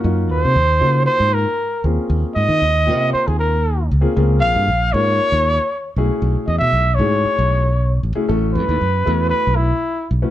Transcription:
0.04 0.30 F#2 medium
0.04 0.52 A#3 medium
0.04 0.53 C#4 medium
0.04 0.52 D#4 medium
0.04 0.52 F4 medium
0.04 0.52 F#4 medium
0.30 0.43 D#2 medium
0.30 1.04 C5 loud
0.45 0.55 C3 medium
0.56 0.80 D#2 medium
0.80 1.06 C#3 medium
0.80 1.46 A#3 medium
0.80 1.45 C#4 medium
0.80 1.46 D#4 medium
0.80 1.45 F4 medium
0.80 1.46 F#4 medium
1.06 1.36 C5 loud
1.20 1.45 G#2 medium
1.34 1.85 A#4 medium
1.84 1.97 D#2 medium
1.84 2.67 A#3 medium
1.84 2.67 C4 medium
1.84 2.67 C#4 medium
1.84 2.67 F4 medium
1.84 2.67 G#4 medium
2.10 2.22 D#2 medium
2.36 2.48 G#2 medium
2.36 3.09 D#5 loud
2.49 2.61 D#3 medium
2.62 2.90 D#2 medium
2.86 3.12 C3 medium
2.86 3.52 A#3 medium
2.86 3.52 C4 medium
2.86 3.52 C#4 medium
2.86 3.51 F4 medium
2.86 3.52 G4 medium
3.13 3.29 C5 medium
3.13 muted fingered electric bass stroke soft
3.28 3.88 D#2 medium
3.28 3.39 G#4 medium
3.39 3.87 A#4 medium
3.91 4.04 C#2 medium
4.01 4.10 A#3 medium
4.01 4.10 C4 medium
4.01 4.11 C#4 medium
4.01 4.11 F4 medium
4.01 4.11 G#4 loud
4.06 muted fingered electric bass stroke soft
4.16 4.42 C#2 loud
4.16 4.65 A#3 medium
4.16 4.65 C4 medium
4.16 4.65 C#4 medium
4.16 4.65 F4 medium
4.16 4.65 G#4 loud
4.40 4.55 A#1 medium
4.40 4.94 F5 loud
4.55 4.67 G2 medium
4.68 4.93 A#1 medium
4.93 5.18 G#2 medium
4.93 5.59 A#3 medium
4.93 5.59 C#4 medium
4.93 5.59 D#4 medium
4.93 5.59 F4 medium
4.93 5.59 A#4 medium
4.93 5.97 C#5 loud
5.32 5.57 D#2 medium
5.96 6.09 B1 medium
5.96 6.80 A3 medium
5.96 6.80 C#4 medium
5.96 6.80 E4 medium
5.96 6.80 F#4 medium
5.96 6.80 G#4 loud
6.22 6.35 B1 medium
6.47 6.60 E2 medium
6.47 6.58 D#5 medium
6.59 6.72 B2 medium
6.59 6.96 E5 loud
6.73 7.00 B1 medium
6.95 7.24 G#2 medium
6.95 8.01 C#5 loud
6.99 7.65 A3 medium
6.99 7.64 C#4 medium
6.99 7.65 E4 medium
6.99 7.65 F#4 medium
6.99 7.65 G#4 medium
7.25 muted fingered electric bass stroke soft
7.38 8.00 B1 medium
8.03 8.16 A1 medium
8.15 8.24 A3 medium
8.15 8.24 C#4 medium
8.15 8.24 E4 medium
8.15 8.24 F#4 medium
8.15 8.24 G#4 loud
8.15 muted fingered electric bass stroke soft
8.29 8.57 A1 medium
8.29 8.77 A3 medium
8.29 8.77 C#4 medium
8.29 8.77 E4 medium
8.29 8.77 F#4 medium
8.29 8.77 A4 loud
8.54 8.68 F#2 medium
8.54 9.28 B4 loud
8.69 8.81 D#2 medium
8.81 9.06 F#2 medium
9.06 9.31 E2 loud
9.06 9.71 A3 medium
9.06 9.71 C#4 medium
9.06 9.71 E4 medium
9.06 9.71 F#4 medium
9.06 9.71 A4 medium
9.30 9.57 B4 loud
9.47 9.71 B1 medium
9.56 10.09 E4 medium
10.11 10.23 B1 medium
10.22 10.30 A3 medium
10.22 10.30 C#4 medium
10.22 10.30 E4 medium
10.22 10.30 F#4 medium
10.22 10.30 B4 medium

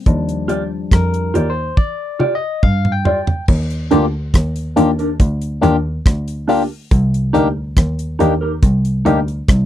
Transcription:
0.06 0.82 D#2 loud
0.06 1.31 F3 medium
0.06 1.31 G3 medium
0.06 1.31 D4 medium
0.06 kick loud
0.06 closed hi-hat medium
0.29 closed hi-hat medium
0.48 0.62 F4 medium
0.48 0.62 G4 medium
0.48 0.62 D5 loud
0.48 closed hi-hat medium
0.91 1.30 F2 loud
0.91 1.51 A#4 medium
0.91 kick loud
0.91 cross-stick loud
0.91 closed hi-hat medium
1.14 closed hi-hat medium
1.34 1.54 D#2 medium
1.34 1.47 F4 medium
1.34 1.48 G4 medium
1.34 1.48 D5 medium
1.34 closed hi-hat medium
1.50 1.76 C5 medium
1.77 2.36 D5 loud
1.77 kick loud
1.77 high tom medium
2.19 2.33 F4 medium
2.19 2.33 G4 loud
2.19 2.34 D5 loud
2.19 mid tom medium
2.35 2.64 D#5 medium
2.63 3.01 G2 medium
2.63 2.93 F5 loud
2.63 kick loud
2.63 mid tom medium
2.85 mid tom medium
2.92 3.45 G5 medium
3.05 3.19 F4 medium
3.05 3.19 G4 medium
3.05 3.19 D5 medium
3.05 floor tom medium
3.27 floor tom medium
3.48 3.86 D#2 loud
3.48 kick loud
3.48 crash loud
3.70 closed hi-hat soft
3.91 4.30 D2 loud
3.91 4.05 A#3 loud
3.91 4.04 D4 medium
3.91 4.05 F4 medium
3.91 4.05 G4 loud
3.91 4.05 G4 medium
3.91 4.05 A#4 medium
3.91 closed hi-hat medium
4.34 4.72 D#2 loud
4.34 kick loud
4.34 cross-stick loud
4.34 closed hi-hat medium
4.56 closed hi-hat medium
4.76 5.15 D#2 medium
4.76 4.90 A#3 medium
4.76 4.90 D4 medium
4.76 4.90 F4 medium
4.76 4.90 G4 loud
4.76 4.90 G4 medium
4.76 4.91 A#4 medium
4.76 closed hi-hat medium
4.99 5.09 D4 medium
4.99 5.09 G4 medium
4.99 5.09 A#4 medium
4.99 closed hi-hat soft
5.20 5.58 D2 loud
5.20 kick loud
5.20 closed hi-hat medium
5.41 closed hi-hat medium
5.61 5.82 D#2 loud
5.61 5.75 A#3 medium
5.61 5.76 D4 medium
5.61 5.76 D4 loud
5.61 5.76 F4 medium
5.61 5.76 G4 loud
5.61 5.76 G4 medium
5.61 5.76 A#4 loud
5.61 closed hi-hat medium
6.06 6.63 D2 medium
6.06 kick loud
6.06 cross-stick loud
6.06 closed hi-hat medium
6.28 closed hi-hat medium
6.48 6.62 A#3 medium
6.48 6.61 D4 medium
6.48 6.62 D4 medium
6.48 6.62 F4 medium
6.48 6.62 G4 medium
6.48 6.62 G4 loud
6.48 6.62 A#4 medium
6.48 open hi-hat medium
6.91 7.29 C2 loud
6.91 kick loud
6.91 closed hi-hat medium
7.14 closed hi-hat medium
7.33 7.72 D2 medium
7.33 7.47 A#3 loud
7.33 7.47 D4 medium
7.33 7.47 D#4 medium
7.33 7.47 G4 loud
7.33 7.47 A#4 loud
7.33 closed hi-hat medium
7.77 8.15 D#2 loud
7.77 kick loud
7.77 cross-stick loud
7.77 closed hi-hat loud
7.99 closed hi-hat medium
8.19 8.58 D#2 loud
8.19 8.33 A#3 medium
8.19 8.33 D4 medium
8.19 8.32 D#4 medium
8.19 8.33 D#4 medium
8.19 8.33 G4 medium
8.19 8.33 G4 loud
8.19 8.33 A#4 medium
8.19 closed hi-hat medium
8.41 8.52 D#4 medium
8.41 8.52 G4 medium
8.41 8.51 A#4 medium
8.63 9.01 C2 loud
8.63 kick loud
8.63 closed hi-hat medium
8.85 closed hi-hat medium
9.05 9.25 D2 loud
9.05 9.19 A#3 loud
9.05 9.19 D4 medium
9.05 9.18 D#4 medium
9.05 9.19 D#4 medium
9.05 9.19 G4 loud
9.05 9.19 A#4 loud
9.05 closed hi-hat medium
9.28 closed hi-hat soft
9.48 9.66 C2 loud
9.48 kick loud
9.48 cross-stick loud
9.48 closed hi-hat medium

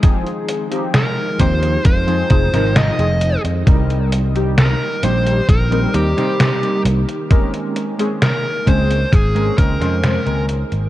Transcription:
0.00 10.89 D#3 medium
0.00 3.63 F3 medium
0.00 0.66 F3 medium
0.00 3.63 G#3 medium
0.00 0.66 C4 medium
0.00 7.26 D#4 loud
0.00 0.66 D#4 medium
0.00 0.66 G#4 loud
0.00 kick loud
0.00 closed hi-hat medium
0.27 closed hi-hat soft
0.49 closed hi-hat medium
0.71 0.94 F3 medium
0.71 0.94 C4 medium
0.71 0.94 D#4 medium
0.71 0.95 G4 medium
0.71 closed hi-hat medium
0.94 1.41 A#4 medium
0.94 snare loud
0.94 closed hi-hat medium
1.39 1.76 D#2 loud
1.39 1.76 F3 medium
1.39 1.77 C4 medium
1.39 1.77 D#4 medium
1.39 1.77 G4 medium
1.39 1.82 C5 medium
1.39 kick medium
1.39 closed hi-hat medium
1.63 closed hi-hat medium
1.85 2.21 F2 medium
1.85 2.76 C5 medium
1.85 kick loud
1.85 closed hi-hat medium
2.07 2.25 F3 medium
2.07 2.26 C4 medium
2.07 2.26 D#4 medium
2.07 2.26 G#4 loud
2.07 closed hi-hat soft
2.29 2.49 F1 medium
2.29 2.48 F3 medium
2.29 2.48 C4 medium
2.29 2.48 D#4 medium
2.29 2.48 G#4 loud
2.29 kick loud
2.29 closed hi-hat medium
2.53 2.90 G#1 medium
2.53 2.93 F3 loud
2.53 2.93 C4 medium
2.53 2.94 D#4 medium
2.53 2.94 A#4 loud
2.53 snare soft
2.53 closed hi-hat soft
2.76 3.41 D#5 loud
2.76 snare loud
2.76 closed hi-hat medium
2.98 3.35 F1 medium
2.98 3.36 F3 medium
2.98 3.36 C4 medium
2.98 3.36 D#4 medium
2.98 3.36 G#4 medium
2.98 closed hi-hat soft
3.21 closed hi-hat medium
3.44 3.62 F2 medium
3.44 closed hi-hat medium
3.66 4.73 C2 loud
3.66 4.29 G3 medium
3.66 7.27 G3 medium
3.66 10.89 A#3 medium
3.66 4.30 C4 medium
3.66 4.30 D#4 medium
3.66 4.30 A#4 loud
3.66 kick loud
3.66 closed hi-hat medium
3.90 closed hi-hat soft
4.12 closed hi-hat medium
4.35 4.58 G3 medium
4.35 4.58 C4 medium
4.35 4.58 D#4 medium
4.35 4.59 G4 loud
4.35 closed hi-hat medium
4.58 5.05 A#4 loud
4.58 snare loud
4.58 closed hi-hat medium
5.02 5.40 A#1 loud
5.02 5.40 G3 medium
5.02 5.40 C4 medium
5.02 5.41 D#4 medium
5.02 5.41 G4 loud
5.02 5.46 C5 loud
5.02 closed hi-hat medium
5.27 closed hi-hat medium
5.49 5.85 A#1 medium
5.49 5.95 A#4 medium
5.49 kick loud
5.49 closed hi-hat medium
5.71 5.89 G3 loud
5.71 5.90 C4 medium
5.71 5.90 D#4 medium
5.71 5.90 A#4 loud
5.71 closed hi-hat soft
5.94 6.13 D#2 medium
5.94 6.11 G3 medium
5.94 6.12 C4 medium
5.94 6.12 D#4 medium
5.94 6.82 G4 medium
5.94 6.12 A#4 medium
5.94 closed hi-hat medium
6.17 6.57 G3 medium
6.17 6.57 C4 medium
6.17 6.57 D#4 medium
6.17 6.58 C5 loud
6.17 snare soft
6.17 closed hi-hat soft
6.40 snare loud
6.40 closed hi-hat medium
6.62 6.99 G3 medium
6.62 7.00 C4 medium
6.62 7.00 D#4 medium
6.62 7.00 A#4 medium
6.62 closed hi-hat soft
6.85 7.04 C2 loud
6.85 closed hi-hat medium
7.09 closed hi-hat medium
7.30 7.93 G#3 medium
7.30 10.89 G#3 medium
7.30 7.94 C4 medium
7.30 7.94 C#4 medium
7.30 7.94 A#4 medium
7.30 kick loud
7.30 closed hi-hat medium
7.54 closed hi-hat soft
7.76 closed hi-hat medium
7.98 8.21 G#3 medium
7.98 8.22 C4 medium
7.98 8.22 C#4 medium
7.98 8.22 G#4 loud
7.98 closed hi-hat medium
8.22 8.69 A#4 loud
8.22 snare loud
8.22 closed hi-hat medium
8.66 9.03 C#2 loud
8.66 9.04 G#3 medium
8.66 9.04 C4 medium
8.66 9.04 C#4 medium
8.66 9.04 G#4 loud
8.66 9.14 C5 loud
8.66 kick medium
8.66 closed hi-hat medium
8.91 closed hi-hat medium
9.13 9.49 G#1 medium
9.13 9.58 G#4 loud
9.13 kick loud
9.13 closed hi-hat medium
9.35 9.53 G#3 loud
9.35 9.53 C4 medium
9.35 9.53 C#4 medium
9.35 9.54 A#4 loud
9.35 closed hi-hat soft
9.57 9.76 C#2 medium
9.57 9.75 G#3 medium
9.57 9.75 C4 medium
9.57 9.75 C#4 medium
9.57 10.45 A#4 loud
9.57 9.76 A#4 medium
9.57 kick loud
9.57 closed hi-hat medium
9.80 10.17 F2 medium
9.80 10.20 G#3 loud
9.80 10.20 C4 medium
9.80 10.21 C#4 medium
9.80 10.21 C5 loud
9.80 snare soft
9.80 closed hi-hat medium
10.04 snare loud
10.04 closed hi-hat medium
10.25 10.62 C#2 medium
10.25 10.63 G#3 medium
10.25 10.63 C4 medium
10.25 10.63 C#4 medium
10.25 10.63 A#4 medium
10.25 closed hi-hat soft
10.49 closed hi-hat medium
10.72 10.89 G#1 medium
10.72 closed hi-hat medium

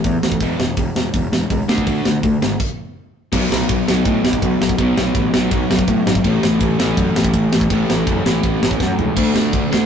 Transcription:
0.04 0.16 E2 medium
0.04 0.21 A2 medium
0.04 0.21 E3 medium
0.04 kick loud
0.04 open hi-hat medium
0.23 0.35 D2 medium
0.23 0.40 A2 medium
0.23 0.40 E3 medium
0.23 snare loud
0.32 kick medium
0.40 0.52 E1 medium
0.40 0.58 E2 medium
0.40 0.59 B2 medium
0.40 0.59 E3 medium
0.40 kick loud
0.40 open hi-hat medium
0.60 0.71 E1 medium
0.60 0.76 E2 medium
0.60 0.76 B2 medium
0.60 snare loud
0.77 0.89 E1 medium
0.77 0.94 E2 medium
0.77 0.94 B2 medium
0.77 kick loud
0.77 open hi-hat medium
0.95 1.07 E1 medium
0.95 1.13 E2 medium
0.95 1.13 B2 medium
0.95 snare loud
1.14 1.26 E1 medium
1.14 1.31 E2 medium
1.14 1.31 B2 medium
1.14 kick loud
1.14 open hi-hat medium
1.32 1.44 E1 medium
1.32 1.49 E2 medium
1.32 1.49 B2 medium
1.32 snare loud
1.50 1.62 C#2 medium
1.50 1.67 E2 medium
1.50 1.67 B2 medium
1.50 kick loud
1.50 open hi-hat medium
1.68 1.81 D2 medium
1.68 1.86 D3 loud
1.68 1.86 A3 medium
1.68 1.86 D4 loud
1.68 snare loud
1.78 kick medium
1.87 1.99 D2 medium
1.87 2.04 D3 medium
1.87 2.05 A3 medium
1.87 2.05 D4 loud
1.87 kick medium
1.87 open hi-hat medium
2.05 2.18 D2 medium
2.05 2.22 D3 medium
2.05 2.22 A3 medium
2.05 snare loud
2.23 2.35 D2 medium
2.23 2.40 D3 medium
2.23 2.40 A3 medium
2.23 kick loud
2.23 open hi-hat medium
2.41 2.53 G#1 medium
2.41 2.58 D3 medium
2.41 2.58 A3 medium
2.41 snare loud
2.60 kick loud
2.60 crash medium
3.32 3.45 B1 loud
3.32 3.90 B2 medium
3.32 3.88 F#3 loud
3.32 3.87 B3 loud
3.32 kick loud
3.32 crash loud
3.50 3.62 B1 medium
3.50 snare loud
3.69 3.81 B1 medium
3.69 kick loud
3.69 ride medium
3.87 3.99 B1 medium
3.87 4.77 B2 medium
3.87 4.78 F#3 medium
3.87 4.78 B3 loud
3.87 snare loud
4.05 4.17 A2 medium
4.05 kick loud
4.05 ride medium
4.24 4.36 B1 medium
4.24 snare loud
4.33 kick medium
4.42 4.54 B1 medium
4.42 kick loud
4.42 ride medium
4.61 4.73 B1 medium
4.61 snare loud
4.69 kick medium
4.78 4.90 B1 loud
4.78 5.32 B2 loud
4.78 5.33 F#3 loud
4.78 5.32 B3 loud
4.78 kick loud
4.78 ride medium
4.97 5.09 B1 loud
4.97 snare loud
5.15 5.27 A1 loud
5.15 kick loud
5.15 ride medium
5.33 5.45 B1 medium
5.33 6.24 B2 medium
5.33 6.24 F#3 medium
5.33 6.24 B3 medium
5.33 snare loud
5.51 5.63 B1 loud
5.51 kick loud
5.51 ride medium
5.70 5.82 B1 loud
5.70 snare loud
5.79 kick medium
5.87 6.00 A2 medium
5.87 kick loud
5.87 ride medium
6.07 6.18 G#1 medium
6.07 snare loud
6.15 kick medium
6.24 6.36 A1 loud
6.24 6.81 A2 medium
6.24 6.80 E3 medium
6.24 6.78 A3 loud
6.24 kick loud
6.24 ride medium
6.43 6.55 A1 loud
6.43 snare loud
6.60 6.73 A1 medium
6.60 kick loud
6.60 ride medium
6.79 6.91 A1 medium
6.79 7.69 A2 medium
6.79 7.70 E3 medium
6.79 7.72 A3 medium
6.79 snare loud
6.97 7.09 F#2 medium
6.97 kick loud
6.97 ride medium
7.16 7.28 A1 loud
7.16 snare loud
7.25 kick medium
7.33 7.46 A1 loud
7.33 kick loud
7.33 ride medium
7.53 7.65 A1 medium
7.53 snare loud
7.61 kick medium
7.70 7.82 A1 loud
7.70 8.24 A2 loud
7.70 8.25 E3 medium
7.70 8.25 A3 loud
7.70 kick loud
7.70 ride medium
7.90 8.01 A1 loud
7.90 snare loud
8.07 8.19 F#1 loud
8.07 kick loud
8.07 ride medium
8.25 8.37 A1 medium
8.25 9.15 A2 medium
8.25 9.16 E3 medium
8.25 9.17 A3 medium
8.25 snare loud
8.43 8.56 A1 medium
8.43 kick loud
8.43 ride medium
8.63 8.74 A1 loud
8.63 snare loud
8.71 kick medium
8.80 8.92 F#2 medium
8.80 kick loud
8.80 snare medium
8.99 9.11 C#2 medium
8.99 floor tom loud
9.16 9.29 D2 loud
9.16 9.74 D3 medium
9.16 9.73 A3 medium
9.16 9.71 D4 medium
9.16 kick loud
9.16 crash loud
9.36 9.47 D2 loud
9.36 snare loud
9.53 9.65 D2 medium
9.53 kick loud
9.53 ride medium
9.72 9.84 D2 medium
9.72 9.86 D3 medium
9.72 9.86 A3 medium
9.72 9.86 D4 medium
9.72 snare loud

